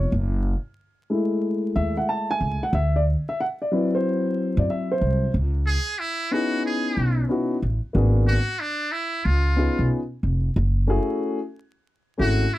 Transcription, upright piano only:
1.10 2.69 G#3 medium
1.10 2.69 A3 soft
1.10 2.69 E4 medium
1.76 1.95 E5 loud
1.97 2.08 F#5 medium
2.09 2.30 A5 medium
2.31 2.63 G#5 loud
2.63 2.74 F#5 loud
2.75 2.95 E5 loud
2.96 3.03 D5 medium
3.29 3.38 E5 medium
3.40 3.45 F#5 loud
3.62 3.94 D5 medium
3.71 5.30 F#3 medium
3.71 5.30 C4 medium
3.71 5.31 E4 medium
3.71 5.30 B4 medium
3.95 4.60 C5 medium
4.59 4.70 D5 medium
4.70 4.91 E5 medium
4.92 5.32 C5 medium
6.31 7.25 B3 medium
6.31 7.25 C#4 medium
6.31 7.25 D#4 medium
6.31 7.26 E4 medium
6.31 7.26 G#4 medium
7.29 7.55 B3 medium
7.29 7.55 C#4 medium
7.29 7.55 D#4 medium
7.29 7.56 E4 medium
7.29 7.56 F#4 medium
7.93 8.35 A#3 medium
7.93 8.35 B3 medium
7.93 8.36 D4 medium
7.93 8.36 F#4 medium
7.93 8.36 G#4 medium
9.56 9.98 B3 medium
9.56 9.98 C#4 medium
9.56 9.99 D#4 medium
9.56 9.99 F4 medium
9.56 9.99 G#4 medium
10.87 11.37 A3 medium
10.87 11.37 C#4 medium
10.87 11.38 E4 medium
10.87 11.38 F#4 medium
10.87 11.38 G#4 loud
12.18 12.44 A3 medium
12.18 12.44 C#4 medium
12.18 12.44 E4 medium
12.18 12.45 F#4 medium
12.18 12.45 G#4 medium

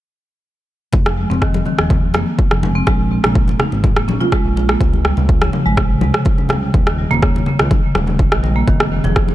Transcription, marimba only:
1.06 1.17 F3 medium
1.18 1.29 G#3 medium
1.30 1.41 C4 medium
1.42 1.53 D#3 medium
1.66 1.73 D#3 medium
1.79 1.90 F3 medium
2.14 2.26 A#3 medium
2.51 2.62 F3 medium
2.63 2.74 G#3 medium
2.75 2.86 C4 medium
2.87 2.98 G#3 medium
3.11 3.18 G#3 medium
3.24 3.35 A#3 medium
3.60 3.72 D#4 medium
3.96 4.07 A#3 medium
4.08 4.19 C#4 medium
4.21 4.31 F4 medium
4.32 4.44 G#3 loud
4.56 4.63 G#3 medium
4.69 4.80 A#3 medium
5.05 5.17 G3 medium
5.42 5.52 C#3 medium
5.53 5.65 F3 medium
5.66 5.76 G#3 loud
5.77 5.89 C3 medium
6.01 6.08 C3 medium
6.14 6.25 C#3 medium
6.50 6.62 G3 medium
6.87 6.97 D#3 medium
6.98 7.10 G3 medium
7.11 7.21 A#3 loud
7.22 7.34 C#3 medium
7.47 7.54 C#3 medium
7.59 7.70 D#3 medium
7.95 8.07 G#3 medium
8.32 8.42 D#3 medium
8.43 8.55 G3 medium
8.56 8.67 A#3 medium
8.67 8.79 D#3 medium
8.92 8.99 D#3 medium
9.04 9.16 F3 medium

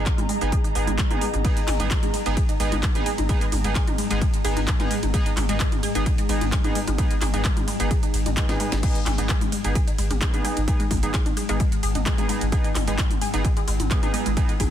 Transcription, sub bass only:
0.18 0.29 G#1 medium
0.41 0.52 G#1 medium
0.65 0.75 G#1 medium
0.75 0.87 G#1 loud
0.88 0.98 G#1 medium
1.11 1.21 G#1 medium
1.34 1.44 G#1 medium
1.57 1.67 G#1 medium
1.68 1.79 G#1 loud
1.80 1.91 G#1 medium
2.03 2.14 G#1 medium
2.26 2.37 G#1 medium
2.49 2.59 G#1 medium
2.60 2.72 G#1 loud
2.72 2.83 G#1 medium
2.95 3.06 G#1 medium
3.18 3.29 G#1 medium
3.41 3.52 G#1 medium
3.52 3.64 G#1 loud
3.64 3.75 G#1 medium
3.87 3.98 G#1 medium
4.11 4.21 G#1 medium
4.34 4.44 G#1 medium
4.45 4.56 G#1 loud
4.57 4.67 G#1 medium
4.80 4.91 G#1 medium
5.03 5.14 G#1 medium
5.26 5.36 G#1 medium
5.37 5.48 G#1 loud
5.49 5.60 G#1 medium
5.72 5.83 G#1 medium
5.95 6.06 G#1 medium
6.18 6.29 G#1 medium
6.29 6.41 G#1 loud
6.41 6.52 G#1 medium
6.64 6.75 G#1 medium
6.87 6.98 G#1 medium
7.10 7.21 G#1 medium
7.21 7.33 G#1 loud
7.34 7.44 G#1 medium
7.57 7.67 G#1 medium
7.80 7.91 G#1 medium
8.03 8.13 G#1 medium
8.14 8.25 G#1 loud
8.26 8.37 G#1 medium
8.49 8.60 G#1 medium
8.72 8.83 G#1 medium
8.95 9.06 G#1 medium
9.06 9.18 G#1 loud
9.18 9.29 G#1 medium
9.41 9.52 G#1 medium
9.64 9.75 G#1 medium
9.87 9.98 G#1 medium
9.98 10.10 G#1 loud
10.11 10.21 G#1 medium
10.34 10.44 G#1 medium
10.57 10.67 G#1 medium
10.80 10.90 G#1 medium
10.91 11.02 G#1 loud
11.03 11.14 G#1 medium
11.26 11.37 G#1 medium
11.49 11.60 G#1 medium
11.72 11.83 G#1 medium
11.83 11.95 G#1 loud
11.95 12.06 G#1 medium
12.18 12.29 G#1 medium
12.41 12.52 G#1 medium
12.64 12.75 G#1 medium
12.75 12.87 G#1 loud
12.87 12.98 G#1 medium
13.11 13.21 G#1 medium
13.34 13.44 G#1 medium
13.57 13.67 G#1 medium
13.68 13.79 G#1 loud
13.80 13.91 G#1 medium
14.03 14.14 G#1 medium
14.26 14.37 G#1 medium
14.49 14.59 G#1 medium
14.60 14.70 G#1 loud

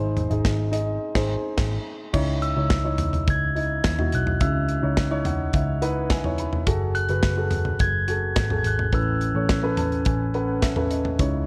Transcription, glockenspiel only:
2.43 2.95 E6 medium
3.30 4.16 G#6 medium
4.15 4.27 F#6 medium
4.41 5.22 E6 medium
6.95 7.48 F#6 medium
7.80 8.54 G#6 loud
8.58 8.65 G#6 medium
8.67 8.95 F#6 medium
8.95 9.75 E6 medium

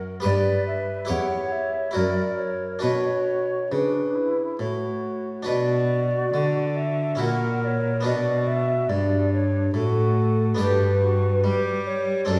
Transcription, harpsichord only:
0.00 0.21 F#2 soft
0.00 0.20 C#4 soft
0.00 0.21 F#4 soft
0.00 0.21 A#4 soft
0.20 1.06 B3 soft
0.20 1.05 G4 soft
0.20 1.07 B4 soft
0.24 1.06 G2 soft
1.05 1.90 E4 soft
1.05 1.92 G4 soft
1.05 1.93 C#5 soft
1.10 1.92 E2 soft
1.91 2.79 E4 soft
1.91 2.79 F#4 soft
1.91 2.81 A#4 soft
1.96 2.80 F#2 soft
2.79 3.67 B2 soft
2.79 5.41 D4 soft
2.79 5.42 F#4 soft
2.79 5.43 B4 soft
3.72 4.56 C#3 soft
4.59 5.44 A2 soft
5.43 7.14 D4 soft
5.43 7.15 F#4 soft
5.43 7.16 B4 soft
5.47 6.30 B2 soft
6.34 7.16 D3 soft
7.15 8.00 C#4 soft
7.15 8.01 E4 soft
7.15 8.02 F#4 soft
7.20 8.01 A#2 soft
8.01 10.53 B3 soft
8.01 10.54 D4 soft
8.01 10.55 F#4 soft
8.05 8.86 B2 soft
8.90 9.71 G2 medium
9.74 10.55 A2 soft
10.55 12.23 B3 soft
10.55 12.24 D4 soft
10.55 12.25 G4 soft
10.59 11.40 G2 medium
11.44 12.25 G3 medium
12.25 12.39 C4 medium
12.25 12.39 D4 soft
12.25 12.39 A4 medium
12.29 12.39 F#2 medium

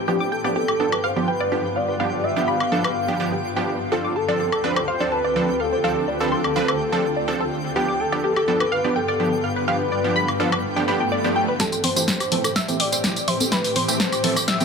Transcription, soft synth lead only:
0.08 0.33 G4 medium
0.32 1.05 A4 loud
1.04 1.29 C5 loud
1.28 1.77 B4 loud
1.76 2.25 D5 loud
2.24 2.49 E5 loud
2.48 3.68 F5 loud
3.92 4.17 F4 loud
4.16 4.87 A4 loud
4.88 5.13 C5 loud
5.12 5.61 B4 loud
5.60 6.09 A4 loud
6.08 6.33 B4 loud
6.32 7.52 A4 medium
7.76 8.01 G4 loud
8.00 8.73 A4 loud
8.72 8.97 B4 loud
8.96 9.45 A4 loud
9.44 11.12 B4 loud
11.60 11.82 A4 loud
11.84 12.57 C5 loud
12.56 12.81 E5 loud
12.80 13.29 D5 loud
13.28 13.51 C5 loud
13.52 13.77 B4 loud
13.76 14.49 C5 loud
14.48 14.65 E5 loud

